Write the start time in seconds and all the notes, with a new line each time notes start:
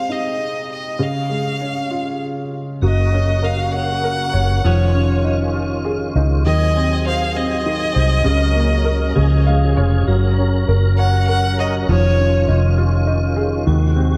Already playing: C3 G#3 C4 F5
0.09 D#4 D#5
0.72 D#5
0.99 C#3 F5
1.30 G#3
1.61 C#4
1.91 F4
2.82 F#1 C#3 F#3 A#3 F#4 D#5
3.13 C#4
3.42 A#4 F5
3.74 C#5 F#5
4.04 A#4
4.33 F#1 C#5
4.64 F1 D#3 F3 C#4 F4 C#5
4.94 C#4
5.24 D#4
5.55 F4
5.85 G#4
6.16 C#2 D#4
6.45 D#2 D#3 F#3 C4 G#4 D#5
6.77 C4
7.06 C5 F5
7.36 C4 D#5
7.66 D#3
7.95 C2 C5
8.24 C#2 C#3 C#4 A#4
8.55 A#3
8.85 A#4
9.15 C#2 C#3 F3 G#4
9.47 G#3 F5
9.77 F1 F4 C#5
10.08 F#1 F#3 C#4 A#4
10.38 C#4
10.68 F#1 A#4
10.99 C#5 F#5
11.28 A#4 F#5
11.59 C#5 D#5
11.89 F1 D#3 F3 F4 C#5
12.19 C#4
12.48 F1 D#4
12.78 F4
13.07 D#4
13.36 G#4
13.67 D#2 C3 D#3 G#3 F#4
13.96 C4